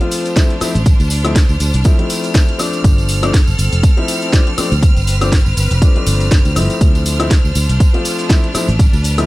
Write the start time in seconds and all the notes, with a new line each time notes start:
Already playing: D4 C5 F6
0.00 F3 A3 C4 F4, closed hi-hat
0.11 open hi-hat, tambourine, shaker
0.25 closed hi-hat, tambourine, shaker
0.36 F3 A3 C4 E4, kick, snare, closed hi-hat, tambourine, shaker
0.50 closed hi-hat
0.61 F3 A3 C4 E4, muted fingered electric bass stroke, open hi-hat, tambourine, high woodblock, shaker
0.75 A1, closed hi-hat, tambourine, shaker
0.86 kick, closed hi-hat, tambourine, shaker
1.00 D2, closed hi-hat, tambourine
1.10 open hi-hat, tambourine, shaker
1.24 F3 A3 C4 E4, closed hi-hat, tambourine, high woodblock, shaker
1.35 kick, snare, closed hi-hat, tambourine, shaker
1.49 D2, tambourine
1.60 D2, open hi-hat, tambourine, shaker
1.73 C2, closed hi-hat, tambourine, shaker
1.84 F3 A3 C4 E4, kick, closed hi-hat, tambourine, shaker
1.98 F3 A3 C4 E4, closed hi-hat
2.10 open hi-hat, tambourine, shaker
2.24 closed hi-hat, tambourine, shaker
2.34 kick, snare, closed hi-hat, tambourine, shaker
2.49 closed hi-hat
2.58 F3 A3 C4 D4, open hi-hat, tambourine, high woodblock, shaker
2.73 closed hi-hat, tambourine, shaker
2.84 G1 C4 A4, kick, closed hi-hat, tambourine, shaker
2.98 closed hi-hat, tambourine
3.09 open hi-hat, tambourine, shaker
3.22 F3 A3 C4 D4, closed hi-hat, tambourine, high woodblock, shaker
3.34 kick, snare, closed hi-hat, tambourine, shaker
3.47 G1, tambourine
3.59 G1, open hi-hat, tambourine, shaker
3.73 F1, closed hi-hat, tambourine, shaker
3.83 kick, closed hi-hat, tambourine, shaker
3.97 F3 A3 C4 E4, closed hi-hat
4.08 open hi-hat, tambourine, shaker
4.22 closed hi-hat, tambourine, shaker
4.33 F3 A3 C4 D4, kick, snare, closed hi-hat, tambourine, shaker
4.47 closed hi-hat
4.58 F3 A3 C4 D4, muted fingered electric bass stroke, open hi-hat, tambourine, high woodblock, shaker
4.72 D2, closed hi-hat, tambourine, shaker
4.82 B4, kick, closed hi-hat, tambourine, shaker
4.97 G1, closed hi-hat, tambourine
5.07 open hi-hat, tambourine, shaker
5.21 F3 A3 C4 D4, closed hi-hat, tambourine, high woodblock, shaker
5.32 kick, snare, closed hi-hat, tambourine, shaker
5.46 G1, tambourine
5.57 G1, open hi-hat, tambourine, shaker
5.71 F1, closed hi-hat, tambourine, shaker
5.82 F3 A3 C4 D4, kick, closed hi-hat, tambourine, shaker
5.95 F3 A3 C4 D4, muted fingered electric bass stroke, closed hi-hat
6.06 G1, open hi-hat, tambourine, shaker
6.21 closed hi-hat, tambourine, shaker
6.31 kick, snare, closed hi-hat, tambourine, shaker
6.45 D2, closed hi-hat, tambourine
6.55 G1 F3 A3 C4 E4, open hi-hat, tambourine, high woodblock, shaker
6.70 closed hi-hat, tambourine, shaker
6.81 D2 D4 C5, kick, closed hi-hat, tambourine, shaker
6.95 closed hi-hat, tambourine
7.06 open hi-hat, tambourine, shaker
7.19 F3 A3 C4 E4, closed hi-hat, tambourine, high woodblock, shaker
7.31 kick, snare, closed hi-hat, tambourine, shaker
7.45 D2, tambourine
7.55 D2, open hi-hat, tambourine, shaker
7.69 C2, closed hi-hat, tambourine, shaker
7.80 kick, closed hi-hat, tambourine, shaker
7.93 F3 A3 C4 F4, closed hi-hat
8.05 open hi-hat, tambourine, shaker
8.18 closed hi-hat, tambourine, shaker
8.29 F3 A3 C4 E4, kick, snare, closed hi-hat, tambourine, shaker
8.44 closed hi-hat
8.54 F3 A3 C4 E4, muted fingered electric bass stroke, open hi-hat, tambourine, high woodblock, shaker
8.68 A1, closed hi-hat, tambourine, shaker
8.79 B4, kick, closed hi-hat, tambourine, shaker
8.93 D2, closed hi-hat, tambourine
9.04 open hi-hat, tambourine, shaker
9.18 F3 A3 C4 E4, closed hi-hat, tambourine, high woodblock, shaker